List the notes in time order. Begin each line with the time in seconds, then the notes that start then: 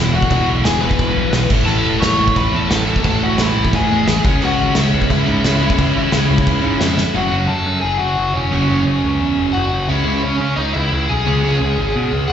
Already playing: E1 E2 B2 E3 E4 E5
0.00 E3
0.13 E2 B2 E3 F#4 F#5
0.22 kick
0.30 E1 E2 B2 E3, kick, crash
0.49 B1
0.65 E1 G#4 G#5, snare, crash
0.80 E1 B2 E3 B4 B5
0.85 E2
0.91 kick
0.99 E1, kick, crash
1.17 B1
1.32 B1 E2 B2 E3, snare, crash
1.48 A1 A2 E3, kick, crash
1.52 A3
1.66 A1 A4 A5, crash
1.85 E1
1.99 A1 A2 E3 C#5 C#6, snare, crash
2.04 A3
2.19 A1
2.28 kick
2.36 A1 B4 B5, kick, crash
2.52 E2 E3 A3 A4 A5
2.56 A2
2.68 A1 A2 E3 A3, snare, crash
2.85 A2 E3
2.90 A3
2.96 kick
3.04 A1 A4 A5, kick, crash
3.22 E1 F#4 F#5
3.36 A1 A2 E3, snare, crash
3.40 A3 E4 E5
3.56 A1
3.65 kick
3.73 A1 G#4 G#5, kick, crash
3.88 E2 A2 E3 A3
4.06 A1 A2 E3 A3, snare, crash
4.23 C#2 C#3 G#3 C#4, kick
4.42 C#2 F#4 F#5, crash
4.59 G#1
4.74 C#2 C#3 G#3 E4 E5, snare, crash
4.78 C#4
4.94 C#2
5.02 kick
5.10 C#2 E4 E5, kick, crash
5.25 G#2 C#3 G#3 C#4
5.44 C#2 C#3 G#3 C#4, snare, crash
5.60 C#3 G#3 C#4
5.70 kick
5.79 C#2, kick, crash
5.96 G#1
6.10 C#2 C#3 G#3, snare, crash
6.14 C#4
6.30 C#2
6.38 kick
6.47 C#2, kick, crash
6.62 G#2 C#3 G#3 C#4
6.80 F2 C#3 G#3 C#4 E4 E5, snare, crash
6.98 snare
7.14 F#1 F#2 C#3 F#3 F#4 F#5
7.31 F#1 F#2 C#3 F#3
7.48 F#2 A4 A5
7.66 F#2
7.81 F#1 G#4 G#5
7.97 F#1 F#4 F#5
8.18 F#1
8.34 E1 C#4 C#5
8.51 F#1 F#2 C#3 F#3
8.68 F#1 F#2 C#3 F#3
8.86 F#1
9.04 C#2
9.21 E2
9.39 F#1
9.53 F#1 F#4 F#5
9.73 F#1
9.88 C#2 C#3 G#3 C#4 E4 E5
10.04 C#2 C#3 G#3 C#4
10.23 C#3 C#4 C#5
10.40 C#3
10.56 C#2 D#4 D#5
10.73 C#2 E4 E5
10.92 C#2
11.09 B1 G#4 G#5
11.26 C#2 C#3 G#3 C#4
11.44 C#2 C#3 G#3 C#4
11.61 C#2
11.78 G#1
11.96 B2
12.13 C#2
12.28 C#2 F#5